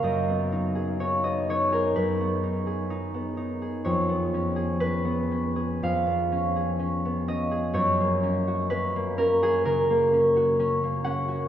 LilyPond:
\new Staff \with { instrumentName = "Harp" } { \time 4/4 \key fis \major \tempo 4 = 63 << { <dis'' eis'' fis''>4 cis''16 dis''16 cis''16 ais'16 b'2 | cis''4 b'4 eis''4. dis''8 | cis''4 b'8 ais'16 gis'16 ais'4. fis''8 | } \\ { <fis, fis'>16 b16 dis'16 gis'16 dis'16 b16 dis'16 gis'16 fis,16 b16 dis'16 gis'16 dis'16 b16 dis'16 gis'16 | eis,16 b16 cis'16 gis'16 cis'16 b16 cis'16 gis'16 eis,16 b16 cis'16 gis'16 cis'16 b16 cis'16 gis'16 | fis,16 ais16 cis'16 fis'16 cis'16 ais16 cis'16 fis'16 cis16 ais16 cis'16 fis'16 cis'16 ais16 cis'16 fis'16 | } >> }